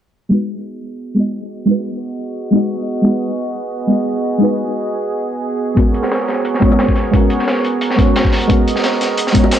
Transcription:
0.29 1.13 G#3 medium
0.29 1.14 B3 medium
0.29 5.73 B3 medium
0.29 1.15 D#4 medium
0.29 5.73 F#4 medium
0.29 1.16 F#4 medium
0.29 9.59 G#4 medium
0.29 5.73 D#5 medium
0.34 1.16 B4 medium
1.14 1.64 G#3 medium
1.14 1.65 B3 medium
1.14 1.66 D#4 medium
1.18 1.67 F#4 medium
1.18 1.68 D#5 medium
1.65 2.49 G#3 medium
1.65 2.51 B3 medium
1.65 2.51 D#4 medium
1.65 2.52 F#4 medium
1.71 2.53 B4 medium
2.51 3.00 G#3 medium
2.51 3.02 B3 medium
2.51 3.03 D#4 medium
2.51 3.03 F#4 medium
2.56 3.04 D#5 medium
3.02 3.86 G#3 medium
3.02 3.87 B3 medium
3.02 3.88 D#4 medium
3.06 3.88 F#4 medium
3.06 3.89 B4 medium
3.87 4.37 G#3 medium
3.87 4.38 B3 medium
3.87 4.39 D#4 medium
3.91 4.40 F#4 medium
3.91 4.40 D#5 medium
4.38 5.23 G#3 medium
4.38 5.23 B3 medium
4.38 5.24 D#4 medium
4.42 5.25 F#4 medium
4.42 5.25 B4 medium
5.74 6.59 G#3 medium
5.74 6.60 B3 medium
5.74 9.59 B3 medium
5.74 6.60 C#4 medium
5.74 9.59 F#4 medium
5.74 9.59 A#4 medium
5.74 8.47 C#5 medium
5.74 kick loud
5.74 closed hi-hat medium
5.78 6.61 F#4 medium
5.78 6.62 A#4 medium
5.94 closed hi-hat medium
6.03 snare medium
6.12 snare loud
6.12 closed hi-hat medium
6.28 snare medium
6.28 closed hi-hat medium
6.45 closed hi-hat medium
6.54 snare soft
6.60 7.09 G#3 medium
6.60 7.11 B3 medium
6.60 7.12 C#4 medium
6.60 kick loud
6.60 closed hi-hat medium
6.60 high bongo medium
6.64 7.12 F#4 medium
6.64 7.13 C#5 medium
6.72 high bongo medium
6.79 snare loud
6.79 closed hi-hat medium
6.88 kick medium
6.96 snare soft
6.96 closed hi-hat medium
7.11 7.95 G#3 medium
7.11 7.96 B3 medium
7.11 7.97 C#4 medium
7.11 7.97 F#4 medium
7.11 kick loud
7.11 closed hi-hat medium
7.16 7.98 A#4 medium
7.30 closed hi-hat medium
7.39 snare soft
7.48 snare loud
7.48 closed hi-hat medium
7.65 closed hi-hat medium
7.81 closed hi-hat medium
7.91 snare medium
7.96 8.46 G#3 medium
7.96 8.47 B3 medium
7.96 8.48 C#4 medium
7.96 kick loud
7.96 closed hi-hat medium
8.00 8.49 F#4 medium
8.00 8.49 C#5 medium
8.16 snare loud
8.16 closed hi-hat medium
8.25 kick medium
8.32 snare soft
8.32 open hi-hat medium
8.42 closed hi-hat soft
8.47 9.31 G#3 medium
8.47 9.32 B3 medium
8.47 9.33 C#4 medium
8.47 9.34 F#4 medium
8.47 9.59 D#5 medium
8.47 kick loud
8.47 closed hi-hat medium
8.52 9.34 A#4 medium
8.68 closed hi-hat medium
8.76 snare medium
8.84 snare loud
8.84 closed hi-hat medium
9.01 snare soft
9.01 closed hi-hat medium
9.17 closed hi-hat medium
9.27 snare soft
9.32 9.59 G#3 medium
9.32 9.59 B3 medium
9.32 9.59 C#4 medium
9.32 kick medium
9.32 closed hi-hat medium
9.32 high bongo soft
9.36 9.59 F#4 medium
9.36 9.59 C#5 medium
9.44 high bongo medium
9.51 snare loud
9.51 closed hi-hat medium

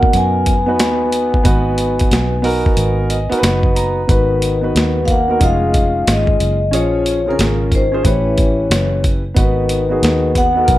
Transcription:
0.00 0.51 B2 medium
0.00 0.11 A#3 medium
0.00 0.51 D#4 medium
0.00 0.52 F#4 medium
0.00 0.52 A#4 medium
0.00 0.16 F#5 medium
0.00 muted fingered electric bass stroke soft
0.00 kick loud
0.13 0.79 F#2 loud
0.13 3.39 B3 loud
0.13 3.41 G#5 loud
0.13 closed hi-hat medium
0.46 kick medium
0.46 closed hi-hat medium
0.66 1.36 B3 medium
0.66 1.36 D#4 medium
0.66 1.37 F#4 medium
0.66 1.37 B4 medium
0.79 1.42 D#2 medium
0.79 snare loud
0.79 closed hi-hat loud
1.12 closed hi-hat medium
1.34 kick medium
1.44 2.08 G#1 medium
1.44 2.33 B3 medium
1.44 2.33 D#4 medium
1.44 2.34 F#4 medium
1.44 2.34 B4 loud
1.44 kick loud
1.44 closed hi-hat medium
1.78 closed hi-hat medium
1.99 kick medium
1.99 closed hi-hat medium
2.11 2.63 B1 medium
2.11 snare loud
2.11 closed hi-hat medium
2.42 3.14 B3 medium
2.42 3.15 D#4 medium
2.42 3.15 F#4 medium
2.42 3.16 A#4 loud
2.42 open hi-hat soft
2.66 muted fingered electric bass stroke soft
2.66 kick loud
2.77 3.29 G#1 loud
2.77 closed hi-hat medium
3.10 3.41 D#5 medium
3.10 closed hi-hat medium
3.29 3.99 B3 medium
3.29 4.00 D#4 medium
3.29 4.00 F#4 medium
3.29 3.36 A#4 medium
3.29 muted fingered electric bass stroke soft
3.29 closed hi-hat soft
3.39 4.04 B4 loud
3.43 4.06 F#1 loud
3.43 3.74 F#5 medium
3.43 snare loud
3.43 closed hi-hat loud
3.63 kick loud
3.75 4.06 A#5 medium
3.75 closed hi-hat medium
4.07 4.72 G#1 loud
4.07 5.00 D#3 medium
4.07 4.53 B3 medium
4.07 4.53 D#4 medium
4.07 4.54 F#4 medium
4.07 4.54 B4 medium
4.07 kick loud
4.07 closed hi-hat medium
4.11 5.07 B4 medium
4.42 closed hi-hat medium
4.61 5.15 B3 medium
4.61 5.16 D#4 medium
4.61 5.16 F#4 medium
4.61 5.17 B4 medium
4.75 5.38 D#2 medium
4.75 snare loud
4.75 closed hi-hat medium
5.03 5.08 G#3 medium
5.03 5.09 F5 medium
5.08 5.39 A#3 medium
5.08 5.40 F#5 loud
5.08 kick medium
5.08 closed hi-hat medium
5.28 5.40 B3 medium
5.28 5.39 D#4 medium
5.28 5.41 F#4 medium
5.28 5.41 A#4 medium
5.39 6.04 F1 loud
5.39 6.03 G#3 medium
5.39 6.56 C#4 medium
5.39 6.56 D#4 medium
5.39 6.57 F4 medium
5.39 6.57 G#4 medium
5.39 kick medium
5.39 closed hi-hat medium
5.44 6.10 F5 loud
5.74 kick medium
5.74 closed hi-hat medium
6.07 6.39 G#1 medium
6.07 6.69 G#3 medium
6.07 6.76 D#5 medium
6.07 snare loud
6.07 closed hi-hat loud
6.27 kick medium
6.40 6.73 F#1 medium
6.40 closed hi-hat medium
6.71 7.36 A#1 medium
6.71 7.25 F3 medium
6.71 7.17 C#4 medium
6.71 7.17 F4 medium
6.71 7.18 G#4 medium
6.71 7.18 C#5 medium
6.71 closed hi-hat medium
6.76 7.31 C#5 medium
7.06 closed hi-hat medium
7.26 7.69 C#3 medium
7.26 7.31 C4 medium
7.26 7.80 F4 medium
7.26 7.80 G#4 medium
7.26 7.81 A#4 medium
7.31 7.83 C#4 medium
7.31 7.75 A#4 medium
7.39 8.02 G#1 medium
7.39 snare loud
7.39 closed hi-hat medium
7.72 8.03 D#3 medium
7.72 8.07 C5 medium
7.72 kick medium
7.72 closed hi-hat medium
7.92 8.02 C#4 medium
7.92 8.04 F4 medium
7.92 8.05 G#4 medium
7.92 8.05 C5 medium
8.03 8.67 A1 loud
8.03 9.00 E3 medium
8.03 9.20 C#4 medium
8.03 9.20 E4 medium
8.03 9.21 G4 medium
8.03 9.21 B4 medium
8.03 kick medium
8.03 closed hi-hat medium
8.08 9.01 C#5 medium
8.38 kick medium
8.38 closed hi-hat medium
8.70 9.33 F#1 medium
8.70 snare loud
8.70 closed hi-hat loud
9.04 kick medium
9.04 closed hi-hat medium
9.34 9.99 G#1 medium
9.34 10.32 D#3 medium
9.34 9.80 B3 medium
9.34 9.81 D#4 medium
9.34 9.81 F#4 medium
9.34 9.82 B4 medium
9.34 kick loud
9.34 closed hi-hat medium
9.39 10.40 B4 medium
9.69 closed hi-hat medium
9.89 10.43 B3 medium
9.89 10.43 D#4 medium
9.89 10.44 F#4 medium
9.89 10.44 G#4 medium
10.03 10.65 D#2 loud
10.03 snare loud
10.03 closed hi-hat medium
10.35 10.78 B3 loud
10.35 10.78 F#5 loud
10.35 kick medium
10.35 closed hi-hat medium
10.55 10.78 B3 medium
10.55 10.78 D#4 medium
10.55 10.78 F#4 medium
10.55 10.62 A4 medium
10.64 10.78 B1 medium
10.64 10.78 A#4 medium
10.64 kick medium
10.64 closed hi-hat medium

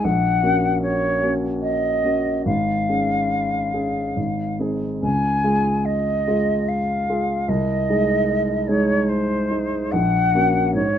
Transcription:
0.04 0.42 A#1 soft
0.04 0.81 F#5 medium
0.43 1.18 A#3 soft
0.43 1.18 C#4 soft
0.43 1.18 F#4 soft
0.82 1.33 C#5 medium
1.23 2.00 A#3 soft
1.23 2.00 C#4 soft
1.23 2.00 F#4 soft
1.61 2.42 D#5 medium
2.04 2.42 A#3 soft
2.04 2.43 C#4 soft
2.04 2.43 F#4 soft
2.45 2.88 G#1 soft
2.45 4.56 F5 medium
2.89 3.70 C#4 soft
2.89 3.70 G#4 soft
3.74 4.13 C#4 soft
3.74 4.13 G#4 soft
4.16 4.59 G#1 soft
4.59 4.99 C4 soft
4.59 4.99 D#4 soft
4.59 4.99 G#4 soft
5.02 5.43 C#2 soft
5.02 5.86 G#5 medium
5.44 6.23 G#3 soft
5.44 6.23 F4 soft
5.44 6.23 G#4 soft
5.85 6.70 D#5 medium
6.27 7.04 G#3 soft
6.27 7.04 F4 soft
6.27 7.04 G#4 soft
6.68 7.50 F5 soft
7.09 7.45 G#3 soft
7.09 7.45 F4 soft
7.09 7.45 G#4 soft
7.48 7.87 C2 soft
7.48 8.69 D#5 medium
7.89 8.65 G#3 soft
7.89 8.65 D#4 soft
7.89 8.65 G#4 soft
8.67 9.47 G#3 soft
8.67 9.47 D#4 soft
8.67 9.47 G#4 soft
8.67 9.10 C#5 medium
9.08 9.93 C5 medium
9.51 9.90 G#3 soft
9.51 9.90 D#4 soft
9.51 9.90 G#4 soft
9.91 10.33 A#1 soft
9.91 10.74 F#5 medium
10.35 10.71 A#3 soft
10.35 10.71 C#4 soft
10.35 10.72 F#4 soft
10.74 10.98 G#2 soft
10.74 10.98 C#5 medium

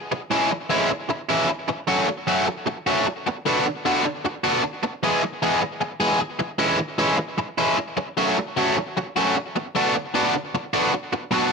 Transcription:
0.12 muted distorted electric guitar stroke soft
0.31 0.51 E3 medium
0.31 0.51 G#3 medium
0.31 0.51 C#4 medium
0.31 0.50 E4 medium
0.51 muted distorted electric guitar stroke soft
0.70 0.90 E3 medium
0.70 0.90 G#3 medium
0.70 0.90 C#4 medium
0.70 0.90 E4 medium
0.91 muted distorted electric guitar stroke soft
1.09 muted distorted electric guitar stroke soft
1.30 1.48 E3 medium
1.30 1.48 G#3 medium
1.30 1.49 C#4 medium
1.30 1.49 E4 medium
1.49 muted distorted electric guitar stroke soft
1.69 muted distorted electric guitar stroke soft
1.88 2.08 F#3 medium
1.88 2.07 A3 medium
1.88 2.07 C#4 medium
1.88 2.07 F#4 loud
2.08 muted distorted electric guitar stroke soft
2.27 2.47 F#3 medium
2.27 2.47 A3 medium
2.27 2.46 C#4 medium
2.27 2.46 F#4 medium
2.47 muted distorted electric guitar stroke soft
2.66 muted distorted electric guitar stroke soft
2.87 3.05 F#3 medium
2.87 3.05 A3 medium
2.87 3.05 C#4 medium
2.87 3.06 F#4 medium
3.06 muted distorted electric guitar stroke soft
3.26 muted distorted electric guitar stroke soft
3.46 3.65 D3 medium
3.46 3.66 B3 medium
3.46 3.65 D4 medium
3.46 3.65 F#4 medium
3.66 muted distorted electric guitar stroke soft
3.85 4.05 D3 medium
3.85 4.05 B3 medium
3.85 4.04 D4 medium
3.85 4.04 F#4 medium
4.05 muted distorted electric guitar stroke soft
4.25 muted distorted electric guitar stroke soft
4.44 4.62 D3 medium
4.44 4.62 B3 medium
4.44 4.63 D4 medium
4.44 4.62 F#4 medium
4.63 muted distorted electric guitar stroke soft
4.83 muted distorted electric guitar stroke soft
5.03 5.23 E3 medium
5.03 5.23 G#3 medium
5.03 5.22 B3 medium
5.03 5.22 G#4 medium
5.23 muted distorted electric guitar stroke soft
5.42 5.61 E3 medium
5.42 5.61 G#3 medium
5.42 5.61 B3 medium
5.42 5.60 G#4 medium
5.62 muted distorted electric guitar stroke soft
5.81 muted distorted electric guitar stroke soft
6.00 6.19 E3 medium
6.00 6.19 G#3 medium
6.00 6.20 B3 medium
6.00 6.20 G#4 medium
6.20 muted distorted electric guitar stroke soft
6.39 muted distorted electric guitar stroke soft
6.59 6.79 E3 medium
6.59 6.78 G#3 medium
6.59 6.78 C#4 medium
6.59 6.77 E4 medium
6.79 muted distorted electric guitar stroke medium
6.98 7.17 E3 medium
6.98 7.17 G#3 medium
6.98 7.17 C#4 medium
6.98 7.16 E4 medium
7.17 muted distorted electric guitar stroke medium
7.38 muted distorted electric guitar stroke soft
7.58 7.76 E3 medium
7.58 7.76 G#3 medium
7.58 7.77 C#4 medium
7.58 7.77 E4 medium
7.78 muted distorted electric guitar stroke soft
7.97 muted distorted electric guitar stroke soft
8.17 8.37 F#3 medium
8.17 8.37 A3 medium
8.17 8.37 C#4 medium
8.17 8.36 F#4 medium
8.38 muted distorted electric guitar stroke soft
8.57 8.76 F#3 medium
8.57 8.76 A3 medium
8.57 8.76 C#4 medium
8.57 8.76 F#4 medium
8.77 muted distorted electric guitar stroke soft
8.97 muted distorted electric guitar stroke soft
9.16 9.35 F#3 medium
9.16 9.35 A3 medium
9.16 9.36 C#4 medium
9.16 9.35 F#4 medium
9.36 muted distorted electric guitar stroke soft
9.56 muted distorted electric guitar stroke soft
9.75 9.94 D3 medium
9.75 9.95 B3 medium
9.75 9.95 D4 medium
9.75 9.94 F#4 medium
9.95 muted distorted electric guitar stroke medium
10.14 10.34 D3 medium
10.14 10.34 B3 medium
10.14 10.34 D4 medium
10.14 10.33 F#4 medium
10.35 muted distorted electric guitar stroke soft
10.55 muted distorted electric guitar stroke soft
10.74 10.92 D3 medium
10.74 10.92 B3 medium
10.74 10.92 D4 medium
10.74 10.93 F#4 medium
10.93 muted distorted electric guitar stroke soft
11.13 muted distorted electric guitar stroke soft
11.31 11.52 B2 medium
11.31 11.52 F#3 medium
11.31 11.52 B3 medium
11.31 11.52 D4 loud
11.31 11.52 F#4 medium

